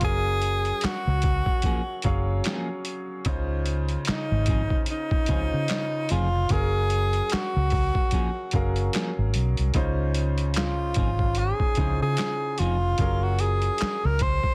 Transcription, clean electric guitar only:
0, 0, Header, 1, 3, 480
1, 0, Start_track
1, 0, Tempo, 810811
1, 9, Time_signature, 4, 2, 24, 8
1, 8610, End_track
2, 0, Start_track
2, 0, Title_t, "Clean electric guitar"
2, 0, Program_c, 0, 27
2, 973, Note_on_c, 0, 53, 79
2, 977, Note_on_c, 0, 58, 85
2, 979, Note_on_c, 0, 61, 86
2, 982, Note_on_c, 0, 68, 92
2, 1070, Note_off_c, 0, 53, 0
2, 1072, Note_off_c, 0, 58, 0
2, 1073, Note_off_c, 0, 61, 0
2, 1074, Note_off_c, 0, 68, 0
2, 1454, Note_on_c, 0, 53, 82
2, 1455, Note_on_c, 0, 58, 87
2, 1459, Note_on_c, 0, 61, 86
2, 1460, Note_on_c, 0, 68, 99
2, 1588, Note_off_c, 0, 53, 0
2, 1588, Note_off_c, 0, 58, 0
2, 1590, Note_off_c, 0, 61, 0
2, 1591, Note_off_c, 0, 68, 0
2, 2655, Note_on_c, 0, 53, 62
2, 2655, Note_on_c, 0, 60, 68
2, 2658, Note_on_c, 0, 63, 69
2, 2658, Note_on_c, 0, 68, 62
2, 2729, Note_off_c, 0, 53, 0
2, 2729, Note_off_c, 0, 60, 0
2, 2731, Note_off_c, 0, 63, 0
2, 2731, Note_off_c, 0, 68, 0
2, 3134, Note_on_c, 0, 53, 66
2, 3135, Note_on_c, 0, 60, 58
2, 3139, Note_on_c, 0, 63, 69
2, 3139, Note_on_c, 0, 68, 67
2, 3209, Note_off_c, 0, 53, 0
2, 3209, Note_off_c, 0, 60, 0
2, 3211, Note_off_c, 0, 63, 0
2, 3211, Note_off_c, 0, 68, 0
2, 3615, Note_on_c, 0, 53, 97
2, 3618, Note_on_c, 0, 60, 89
2, 3621, Note_on_c, 0, 63, 87
2, 3621, Note_on_c, 0, 68, 110
2, 3711, Note_off_c, 0, 53, 0
2, 3712, Note_off_c, 0, 60, 0
2, 3713, Note_off_c, 0, 68, 0
2, 3714, Note_off_c, 0, 63, 0
2, 4813, Note_on_c, 0, 53, 84
2, 4816, Note_on_c, 0, 58, 82
2, 4817, Note_on_c, 0, 61, 83
2, 4818, Note_on_c, 0, 68, 86
2, 4910, Note_off_c, 0, 53, 0
2, 4911, Note_off_c, 0, 58, 0
2, 4912, Note_off_c, 0, 61, 0
2, 4912, Note_off_c, 0, 68, 0
2, 5291, Note_on_c, 0, 53, 73
2, 5293, Note_on_c, 0, 58, 73
2, 5295, Note_on_c, 0, 61, 75
2, 5299, Note_on_c, 0, 68, 75
2, 5389, Note_off_c, 0, 53, 0
2, 5390, Note_off_c, 0, 58, 0
2, 5391, Note_off_c, 0, 61, 0
2, 5393, Note_off_c, 0, 68, 0
2, 6493, Note_on_c, 0, 53, 63
2, 6496, Note_on_c, 0, 60, 68
2, 6498, Note_on_c, 0, 63, 70
2, 6500, Note_on_c, 0, 68, 72
2, 6568, Note_off_c, 0, 53, 0
2, 6569, Note_off_c, 0, 60, 0
2, 6571, Note_off_c, 0, 63, 0
2, 6572, Note_off_c, 0, 68, 0
2, 6978, Note_on_c, 0, 53, 61
2, 6982, Note_on_c, 0, 63, 69
2, 6983, Note_on_c, 0, 60, 68
2, 6986, Note_on_c, 0, 68, 67
2, 7051, Note_off_c, 0, 53, 0
2, 7053, Note_off_c, 0, 60, 0
2, 7053, Note_off_c, 0, 63, 0
2, 7055, Note_off_c, 0, 68, 0
2, 7457, Note_on_c, 0, 53, 86
2, 7461, Note_on_c, 0, 60, 86
2, 7463, Note_on_c, 0, 63, 96
2, 7465, Note_on_c, 0, 68, 95
2, 7552, Note_off_c, 0, 53, 0
2, 7554, Note_off_c, 0, 60, 0
2, 7555, Note_off_c, 0, 63, 0
2, 7556, Note_off_c, 0, 68, 0
2, 8610, End_track
3, 0, Start_track
3, 0, Title_t, "Muted clean electric guitar strokes"
3, 3377, Note_on_c, 9, 29, 43
3, 3436, Note_off_c, 9, 29, 0
3, 7218, Note_on_c, 9, 29, 37
3, 7278, Note_off_c, 9, 29, 0
3, 8610, End_track
0, 0, End_of_file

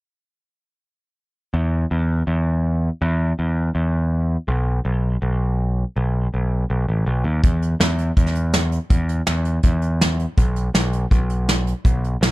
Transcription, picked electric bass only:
0, 0, Header, 1, 2, 480
1, 0, Start_track
1, 0, Tempo, 367872
1, 2015, Time_signature, 4, 2, 24, 8
1, 16069, End_track
2, 0, Start_track
2, 0, Title_t, "Picked electric bass"
2, 0, Program_c, 0, 34
2, 2005, Note_on_c, 0, 40, 87
2, 2407, Note_off_c, 0, 40, 0
2, 2494, Note_on_c, 0, 40, 73
2, 2892, Note_off_c, 0, 40, 0
2, 2963, Note_on_c, 0, 40, 84
2, 3764, Note_off_c, 0, 40, 0
2, 3936, Note_on_c, 0, 40, 100
2, 4333, Note_off_c, 0, 40, 0
2, 4421, Note_on_c, 0, 40, 75
2, 4816, Note_off_c, 0, 40, 0
2, 4891, Note_on_c, 0, 40, 78
2, 5688, Note_off_c, 0, 40, 0
2, 5846, Note_on_c, 0, 35, 84
2, 6248, Note_off_c, 0, 35, 0
2, 6328, Note_on_c, 0, 35, 80
2, 6728, Note_off_c, 0, 35, 0
2, 6811, Note_on_c, 0, 35, 79
2, 7608, Note_off_c, 0, 35, 0
2, 7783, Note_on_c, 0, 35, 89
2, 8177, Note_off_c, 0, 35, 0
2, 8269, Note_on_c, 0, 35, 68
2, 8660, Note_off_c, 0, 35, 0
2, 8742, Note_on_c, 0, 35, 76
2, 8938, Note_off_c, 0, 35, 0
2, 8984, Note_on_c, 0, 33, 70
2, 9196, Note_off_c, 0, 33, 0
2, 9218, Note_on_c, 0, 35, 75
2, 9433, Note_off_c, 0, 35, 0
2, 9451, Note_on_c, 0, 39, 80
2, 9668, Note_off_c, 0, 39, 0
2, 9704, Note_on_c, 0, 40, 87
2, 10097, Note_off_c, 0, 40, 0
2, 10178, Note_on_c, 0, 40, 83
2, 10574, Note_off_c, 0, 40, 0
2, 10658, Note_on_c, 0, 40, 76
2, 11452, Note_off_c, 0, 40, 0
2, 11617, Note_on_c, 0, 40, 98
2, 12013, Note_off_c, 0, 40, 0
2, 12106, Note_on_c, 0, 40, 79
2, 12499, Note_off_c, 0, 40, 0
2, 12576, Note_on_c, 0, 40, 79
2, 13371, Note_off_c, 0, 40, 0
2, 13540, Note_on_c, 0, 35, 90
2, 13936, Note_off_c, 0, 35, 0
2, 14018, Note_on_c, 0, 35, 77
2, 14415, Note_off_c, 0, 35, 0
2, 14500, Note_on_c, 0, 35, 83
2, 15294, Note_off_c, 0, 35, 0
2, 15461, Note_on_c, 0, 35, 93
2, 15857, Note_off_c, 0, 35, 0
2, 15933, Note_on_c, 0, 35, 78
2, 16069, Note_off_c, 0, 35, 0
2, 16069, End_track
0, 0, End_of_file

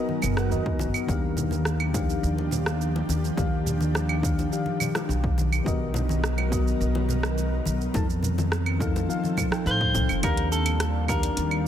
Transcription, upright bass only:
0, 0, Header, 1, 2, 480
1, 0, Start_track
1, 0, Tempo, 571429
1, 914, Time_signature, 4, 2, 24, 8
1, 9809, End_track
2, 0, Start_track
2, 0, Title_t, "Upright bass"
2, 0, Program_c, 0, 32
2, 193, Note_on_c, 0, 30, 81
2, 434, Note_on_c, 0, 39, 84
2, 447, Note_off_c, 0, 30, 0
2, 672, Note_on_c, 0, 30, 77
2, 684, Note_off_c, 0, 39, 0
2, 759, Note_off_c, 0, 30, 0
2, 910, Note_on_c, 0, 39, 86
2, 1815, Note_off_c, 0, 39, 0
2, 1875, Note_on_c, 0, 39, 90
2, 2538, Note_off_c, 0, 39, 0
2, 2594, Note_on_c, 0, 39, 75
2, 2763, Note_off_c, 0, 39, 0
2, 2837, Note_on_c, 0, 39, 86
2, 3739, Note_off_c, 0, 39, 0
2, 4275, Note_on_c, 0, 35, 91
2, 4698, Note_off_c, 0, 35, 0
2, 4756, Note_on_c, 0, 35, 85
2, 5658, Note_off_c, 0, 35, 0
2, 5717, Note_on_c, 0, 35, 90
2, 6378, Note_off_c, 0, 35, 0
2, 6436, Note_on_c, 0, 35, 80
2, 6604, Note_off_c, 0, 35, 0
2, 6678, Note_on_c, 0, 41, 91
2, 7579, Note_off_c, 0, 41, 0
2, 8114, Note_on_c, 0, 45, 99
2, 8358, Note_on_c, 0, 36, 75
2, 8370, Note_off_c, 0, 45, 0
2, 8442, Note_off_c, 0, 36, 0
2, 8474, Note_on_c, 0, 29, 89
2, 8557, Note_off_c, 0, 29, 0
2, 8596, Note_on_c, 0, 39, 91
2, 9498, Note_off_c, 0, 39, 0
2, 9552, Note_on_c, 0, 39, 86
2, 9809, Note_off_c, 0, 39, 0
2, 9809, End_track
0, 0, End_of_file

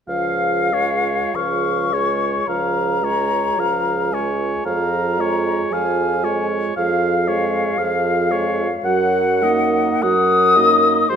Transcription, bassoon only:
0, 0, Header, 1, 2, 480
1, 0, Start_track
1, 0, Key_signature, -5, "major"
1, 0, Tempo, 1265823
1, 30, Time_signature, 4, 2, 24, 8
1, 511, Tempo, 1115242
1, 1471, Tempo, 1063830
1, 2911, Tempo, 1036269
1, 3871, Tempo, 1181102
1, 4351, Tempo, 1075269
1, 4859, End_track
2, 0, Start_track
2, 0, Title_t, "Bassoon"
2, 0, Program_c, 0, 70
2, 33, Note_on_c, 0, 37, 33
2, 458, Note_off_c, 0, 37, 0
2, 513, Note_on_c, 0, 37, 37
2, 940, Note_off_c, 0, 37, 0
2, 1000, Note_on_c, 0, 37, 39
2, 1417, Note_off_c, 0, 37, 0
2, 1474, Note_on_c, 0, 37, 34
2, 1903, Note_off_c, 0, 37, 0
2, 1960, Note_on_c, 0, 41, 41
2, 2381, Note_off_c, 0, 41, 0
2, 2437, Note_on_c, 0, 41, 39
2, 2855, Note_off_c, 0, 41, 0
2, 2912, Note_on_c, 0, 41, 47
2, 3329, Note_off_c, 0, 41, 0
2, 3381, Note_on_c, 0, 41, 43
2, 3810, Note_off_c, 0, 41, 0
2, 3868, Note_on_c, 0, 42, 52
2, 4294, Note_off_c, 0, 42, 0
2, 4351, Note_on_c, 0, 42, 52
2, 4774, Note_off_c, 0, 42, 0
2, 4833, Note_on_c, 0, 44, 59
2, 4859, Note_off_c, 0, 44, 0
2, 4859, End_track
0, 0, End_of_file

